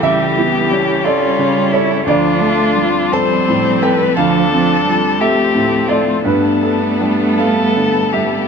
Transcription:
<<
  \new Staff \with { instrumentName = "Felt piano" } { \time 6/8 \key d \dorian \tempo 4. = 58 << { e''4. d''4 cis''8 | d''4. a''4 g''8 | f''4. e''4 d''8 | b'4. f''4 e''8 | } \\ { <cis, a'>8 e'8 g8 a'8 cis8 a'8 | d,8 a'8 f8 a'8 a,8 a'8 | d,8 c'8 f8 a'8 a,8 a'8 | g,8 a'8 g8 a'8 d8 a'8 | } >> }
  \new Staff \with { instrumentName = "Violin" } { \time 6/8 \key d \dorian g'4. f'4 e'8 | f'4. c''4 b'8 | a'4. g'4 f'8 | d'4. a'4 g'8 | }
  \new Staff \with { instrumentName = "String section" } { \time 6/8 \key d \dorian <g g' a'>2. | <f c' a'>2.~ | <f c' a'>2. | <g b a'>2. | }
  \new Staff \with { instrumentName = "Viola" } { \time 6/8 \key d \dorian g8 b8 cis'2 | d'4. c'4. | d'4. c'4. | b2. | }
  \new Staff \with { instrumentName = "Cello" } { \clef bass \time 6/8 \key d \dorian e4. g4. | f8 a8 g2 | f8 f8 g8 a4. | a2. | }
>>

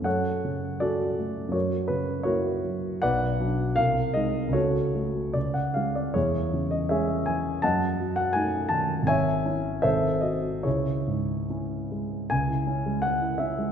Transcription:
<<
  \new Staff \with { instrumentName = "Grand piano" } { \time 2/4 \key fis \minor \tempo 4 = 80 <a' cis'' fis''>4 <fis' a' d''>4 | <fis' ais' cis''>8 b'8 <fis' ais' cis''>4 | <b' d'' fis''>4 eis''8 dis''8 | <fis' a' cis''>4 d''16 fis''16 eis''16 d''16 |
\key cis \minor <e' gis' cis''>8. dis''16 <gis' cis'' e''>8 gis''8 | <dis'' fis'' a''>8. fis''16 gis''8 a''8 | <cis'' e'' gis''>4 <a' bis' e''>8 dis''8 | <e' gis' cis''>4 r4 |
gis''4 fis''8 e''8 | }
  \new Staff \with { instrumentName = "Grand piano" } { \clef bass \time 2/4 \key fis \minor fis,8 cis8 cis'8 a8 | fis,8 cis8 <ais e'>8 fis8 | b,,8 <fis d'>8 bis,,8 <gis dis'>8 | cis,8 <a fis'>8 cis,8 <gis cis'>8 |
\key cis \minor e,8 cis8 <gis cis'>8 e8 | fis,8 fis8 <a dis'>8 dis8 | gis,,8 <cis' e'>8 gis,,8 <bis fis'>8 | cis,8 gis,8 <cis' e'>8 gis8 |
cis,16 e'16 cis'16 gis8 e'16 cis'16 gis16 | }
>>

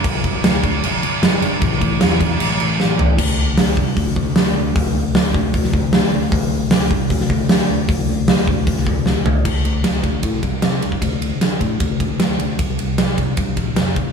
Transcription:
<<
  \new Staff \with { instrumentName = "Picked electric bass" } { \clef bass \time 4/4 \key a \minor \tempo 4 = 153 g,,8 g,,8 d,4 g,,8 g,,8 g,,8 g,,8 | a,,8 a,,8 e,4 a,,8 a,,8 a,,8 a,,8 | \key c \mixolydian d,4 d,8 c,8 d,8 d,8 d,8 d,8 | d,8 d,8 d,8 d,8 d,8 d,8 d,8 d,8 |
d,4 d,8 c,8 d,8 d,8 d,8 d,8 | d,8 d,8 d,8 d,8 d,8 d,8 d,8 d,8 | d,8 d,8 d,8 d,8 a,8 c,8 c8 c,8 | d,4 d8 a,8 d,8 d,8 d,8 d,8 |
c,8 c,8 c,8 c,8 g,8 bes,,8 f,,8 g,,8 | }
  \new DrumStaff \with { instrumentName = "Drums" } \drummode { \time 4/4 <cymc bd>8 <cymc bd>8 <cymc sn>8 <cymc bd>8 cymc8 cymc8 <cymc sn>8 cymc8 | <cymc bd>8 <cymc bd>8 <cymc sn>8 <cymc bd>8 cymc8 cymc8 sn8 tomfh8 | <cymc bd>4 <hho sn>8 bd8 <hho bd>8 bd8 <hho sn>4 | <hho bd>4 <hho sn>8 bd8 <hho bd>16 sn16 bd8 <hho sn>4 |
<hho bd>4 <hho sn>8 bd8 <hho bd>16 sn16 bd8 <hho sn>4 | <hho bd>4 <hho sn>8 bd8 <hho bd>16 sn16 bd8 sn8 tomfh8 | <cymc bd>8 cymr8 <cymr sn>8 <bd cymr>8 <bd cymr>8 <bd cymr>8 <cymr sn>8 cymr16 bd16 | <bd cymr>8 cymr8 <cymr sn>8 <bd cymr>8 <bd cymr>8 <bd cymr>8 <cymr sn>8 cymr8 |
<bd cymr>8 cymr8 <cymr sn>8 <bd cymr>8 <bd cymr>8 <bd cymr>8 <cymr sn>8 <bd cymr>8 | }
>>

